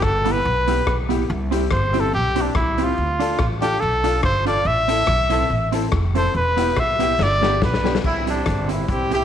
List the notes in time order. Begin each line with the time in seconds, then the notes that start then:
0.02 G1 A4, muted clean electric guitar stroke, kick, cross-stick
0.25 B3 E4 G4, closed hi-hat
0.32 B4
0.44 B1, muted clean electric guitar stroke
0.67 B3 E4 G4, closed hi-hat
0.87 B1 E4 G4, kick, cross-stick
1.09 B3 E4 G4, closed hi-hat
1.30 C2
1.51 C4 E4 G4, closed hi-hat
1.71 G1 C5, muted clean electric guitar stroke, kick, cross-stick
1.93 C4 E4 G4, closed hi-hat
2.00 A4
2.13 B1 G4, muted clean electric guitar stroke
2.35 C4 E4 G4, closed hi-hat
2.42 D4
2.55 C2 E4 G4, kick, cross-stick
2.78 C4 E4 G4, closed hi-hat
2.83 F4
2.98 D2
3.19 D4 F4 A4, closed hi-hat
3.39 A1, muted clean electric guitar stroke, kick, cross-stick
3.61 D4 F4 G4 A4, closed hi-hat
3.80 B1 A4, muted clean electric guitar stroke
4.04 D4 F4 A4, closed hi-hat
4.23 G1 F4 A4 C5, kick, cross-stick
4.45 D4 F4 A4 D5, closed hi-hat
4.65 A1 E5
4.88 C4 E4 A4, closed hi-hat
5.07 B1, muted clean electric guitar stroke, kick, cross-stick
5.29 C4 E4 A4, closed hi-hat
5.49 A1, muted clean electric guitar stroke
5.72 C4 E4 A4, closed hi-hat
5.92 F1 E4 A4, kick, cross-stick
6.15 C4 E4 A4 C5, closed hi-hat
6.35 E1 B4
6.57 B3 E4 G4, closed hi-hat
6.76 B1 E5, muted clean electric guitar stroke, kick, cross-stick
6.99 B3 E4 G4, closed hi-hat
7.19 G1, muted clean electric guitar stroke, snare
7.23 D5
7.41 B3 D4 G4, snare
7.62 B1 B4, kick, snare
7.74 snare
7.84 B3 D4 G4, snare
7.95 snare
8.04 C2 G3 C4 E4, kick, crash
8.26 G3 C4 D4 E4 G4, closed hi-hat
8.46 G1, muted clean electric guitar stroke, kick, cross-stick, closed hi-hat
8.68 C4 E4 G4, closed hi-hat
8.88 B1 C4 E4 G4, muted clean electric guitar stroke, kick, closed hi-hat
9.11 C4 E4 G4, closed hi-hat